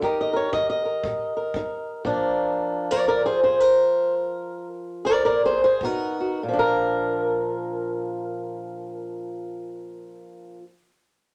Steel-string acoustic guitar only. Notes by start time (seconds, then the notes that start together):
0.01 D#3 D#4 G4 A#4 D#5
0.21 D#5
0.33 A#4 C#5
0.52 D#4 D#5
0.70 D#5
0.85 A#4
1.05 A#2
1.37 A#4
1.56 D#4
2.05 A#2 F3 A#3 D4 D5
2.91 A#4 D5
3.08 A#4 D5
3.26 G#4 C5
3.43 G#4 C5
3.60 A#4
5.05 A#4 D5
5.25 A#4 D5
5.45 G#4 C5
5.64 G#4 C5
5.83 B2 B3 D#4 F#4 A#4
6.20 F#4
6.43 A#2
6.48 F3
6.53 D4
6.59 A#4